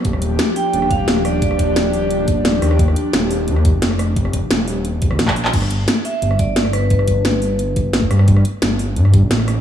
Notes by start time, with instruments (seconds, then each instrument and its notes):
Already playing: analog synth pad F3 D4 G4
0.05 detuned saw bass D#1, kick, closed hi-hat
0.13 cross-stick
0.22 closed hi-hat
0.39 snare, closed hi-hat
0.56 vibraphone G5, open hi-hat
0.73 detuned saw bass D#1, closed hi-hat
0.82 cross-stick
0.91 vibraphone F5, kick, closed hi-hat
1.08 snare, closed hi-hat
1.16 cross-stick
1.25 vibraphone D5, cross-stick, open hi-hat
1.42 vibraphone D5, kick, closed hi-hat
1.51 cross-stick
1.59 kick, closed hi-hat
1.76 detuned saw bass D#1, snare, closed hi-hat
1.93 open hi-hat
2.11 closed hi-hat
2.28 kick, closed hi-hat
2.45 snare, closed hi-hat
2.62 detuned saw bass D#2, cross-stick, open hi-hat
2.71 cross-stick
2.79 kick, closed hi-hat
2.88 cross-stick
2.96 closed hi-hat
3.13 detuned saw bass D#1, snare, closed hi-hat
3.31 open hi-hat
3.48 detuned saw bass D#2, closed hi-hat
3.56 cross-stick
3.65 kick, closed hi-hat
3.74 detuned saw bass F1
3.82 snare, closed hi-hat
3.91 cross-stick
3.99 cross-stick, open hi-hat
4.16 kick, closed hi-hat
4.25 cross-stick
4.33 kick, closed hi-hat
4.51 detuned saw bass D#1, snare, closed hi-hat
4.68 open hi-hat
4.85 closed hi-hat
5.02 kick, closed hi-hat
5.11 detuned saw bass D#2, cross-stick
5.19 detuned saw bass A#1, snare, closed hi-hat
5.28 kick, clap
5.36 open hi-hat
5.45 clap
5.53 detuned saw bass G1, kick, closed hi-hat, crash
5.62 cross-stick
5.71 closed hi-hat
5.88 snare, closed hi-hat
6.05 vibraphone E5, open hi-hat
6.22 detuned saw bass G1, closed hi-hat
6.31 cross-stick
6.39 vibraphone D5, kick, closed hi-hat
6.56 snare, closed hi-hat
6.65 cross-stick
6.73 vibraphone B4, cross-stick, open hi-hat
6.90 vibraphone B4, kick, closed hi-hat
6.99 cross-stick
7.08 kick, closed hi-hat
7.25 detuned saw bass G1, snare, closed hi-hat
7.42 open hi-hat
7.59 closed hi-hat
7.76 kick, closed hi-hat
7.93 snare, closed hi-hat
8.02 kick
8.11 detuned saw bass G2, cross-stick, open hi-hat
8.19 cross-stick
8.28 kick, closed hi-hat
8.37 cross-stick
8.45 closed hi-hat
8.62 detuned saw bass G1, snare, closed hi-hat
8.79 open hi-hat
8.96 detuned saw bass G2, closed hi-hat
9.05 cross-stick
9.14 kick, closed hi-hat
9.22 detuned saw bass A1
9.31 snare, closed hi-hat
9.39 cross-stick
9.48 cross-stick, open hi-hat